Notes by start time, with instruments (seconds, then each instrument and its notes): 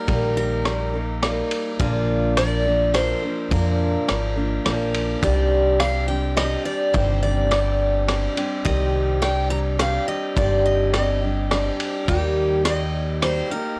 Already playing: steel-string acoustic guitar A#4
0.07 upright bass A#1, steel-string acoustic guitar D#3 G3 A#3 D#4 A#4, kick, ride
0.37 steel-string acoustic guitar A#4
0.65 steel-string acoustic guitar G3 A#3 D#4 A#4, cross-stick, ride
0.94 steel-string acoustic guitar A#3 D#4 A#4
1.22 steel-string acoustic guitar G3 A#3 D#4 A#4, cross-stick, ride
1.51 ride
1.79 upright bass A#1, steel-string acoustic guitar A#2 D3 F3 A#3 D4 F4 A#4, kick, ride
2.37 steel-string acoustic guitar F3 A#3 D4 A#4 D5, cross-stick, ride
2.65 steel-string acoustic guitar F3 A#3 D4 A#4
2.93 steel-string acoustic guitar F3 A#3 D4 A#4 C5, cross-stick, ride
3.22 steel-string acoustic guitar F3 A#3 D4 A#4
3.50 upright bass F2, steel-string acoustic guitar A#2 D3 F3 A#3 D4 A#4, kick, ride
4.07 upright bass G#1, steel-string acoustic guitar F3 A#3 D4 A#4, cross-stick, ride
4.36 steel-string acoustic guitar F3 A#3 D4 A#4
4.65 upright bass A#1, steel-string acoustic guitar F3 A#3 D4 A#4, cross-stick, ride
4.94 ride
5.22 upright bass C2, steel-string acoustic guitar C3 D#3 G3 C4 D4 G4 D5, kick, ride
5.79 steel-string acoustic guitar G3 C4 D4 G4 F5, cross-stick, ride
6.08 steel-string acoustic guitar G3 C4 D4 G4 G5
6.36 steel-string acoustic guitar G3 C4 D4 G4 D#5, cross-stick, ride
6.65 steel-string acoustic guitar D5
6.93 upright bass G1, steel-string acoustic guitar C3 D#3 G3 C4 D4 G4 C5, kick, ride
7.23 steel-string acoustic guitar D5
7.51 steel-string acoustic guitar G3 C4 D4 G4 D5, cross-stick, ride
8.08 steel-string acoustic guitar G3 C4 D4 G4, cross-stick, ride
8.35 steel-string acoustic guitar G3 C4 D4 G4, ride
8.65 upright bass C2, steel-string acoustic guitar C3 D#3 G3 C4 G4 D#5, kick, ride
9.22 steel-string acoustic guitar G3 C4 D4 G4 G5, cross-stick, ride
9.50 steel-string acoustic guitar A#5
9.78 steel-string acoustic guitar G3 C4 D4 G4 F5, cross-stick, ride
10.08 steel-string acoustic guitar D#5
10.36 upright bass G1, steel-string acoustic guitar C3 D#3 G3 C4 D4 G4 D5, kick, ride
10.66 steel-string acoustic guitar D#5
10.93 steel-string acoustic guitar G3 C4 D4 G4 D#5, cross-stick, ride
11.21 steel-string acoustic guitar G3 C4 D4 G4
11.51 steel-string acoustic guitar G3 C4 D4 G4, cross-stick, ride
11.80 ride
12.08 upright bass D#2, steel-string acoustic guitar D#3 G3 A#3 D#4 G4, kick, ride
12.65 steel-string acoustic guitar G3 A#3 D#4 G4 D#5, cross-stick, ride
13.22 steel-string acoustic guitar G3 A#3 D#4 G4 C5, cross-stick, ride
13.50 steel-string acoustic guitar A#3 D#4 G4 A#4